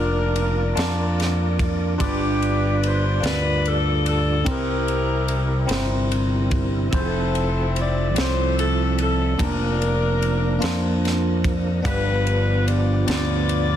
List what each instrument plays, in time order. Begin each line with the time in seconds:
Already playing: fingered electric bass F1, tonewheel organ A#3 F4 A#4 D5, tine electric piano D4 F4 A#4 D5 A5, saxophone section D4 A#4
0.36 ride
0.75 fingered electric bass F2, tine electric piano D4 F4 A#4 D5 A5, snare, ride
1.20 snare, ride
1.59 kick, ride
1.98 fingered electric bass G1, tine electric piano G2 D4 F4 G4 B4 D5, tonewheel organ G3 D4 F4 D5, saxophone section D4 B4, kick, ride
2.02 saxophone section G4
2.42 ride
2.83 saxophone section C5, ride
3.20 fingered electric bass D2, tine electric piano D4 F4 G4 A#4 D5, ride
3.25 saxophone section B4, snare
3.29 tine electric piano B4
3.65 saxophone section A4, ride
4.06 saxophone section A4, ride
4.44 fingered electric bass C2, tine electric piano C3 C4 E4 G4 A#4 C5, tonewheel organ G3 C4 D4 A#4, kick, ride
4.49 saxophone section E4 G4 A#4, tonewheel organ E4
4.88 ride
5.28 ride
5.66 fingered electric bass G1, tine electric piano C4 E4 G4 A#4 C5, ride
5.71 snare
6.12 ride
6.51 kick, ride
6.91 fingered electric bass F1, tonewheel organ F3 C4 A4 E5, tine electric piano F3 C4 E4 A4 C5, kick, ride
6.95 saxophone section C4 E4 A4
7.35 ride
7.76 saxophone section D5, ride
8.14 fingered electric bass C2, tine electric piano C4 E4 F4 A4 C#5, snare, ride
8.19 saxophone section C5
8.24 tine electric piano D5
8.59 saxophone section A4, ride
8.98 saxophone section A4, ride
9.38 fingered electric bass F1, tonewheel organ F3 A#3 D4 A#4, tine electric piano A#3 D4 F4 A#4 A5, saxophone section D4 A#4, kick, ride
9.82 ride
10.22 ride
10.59 fingered electric bass F2, tine electric piano A#3 D4 F4 C5 A5, ride
10.64 snare
11.05 snare, ride
11.44 kick, ride
11.82 fingered electric bass G1, tine electric piano G2 B3 D4 F4 G4 B4, tonewheel organ F3 B3 D4, saxophone section D4 B4, kick, ride
11.86 saxophone section F4, tonewheel organ G4
12.27 ride
12.65 saxophone section D5, ride
13.05 fingered electric bass D2, tine electric piano B3 D4 F4 G4, saxophone section F4 B4 D5, ride
13.10 tine electric piano C#5, snare
13.17 tine electric piano D5
13.49 ride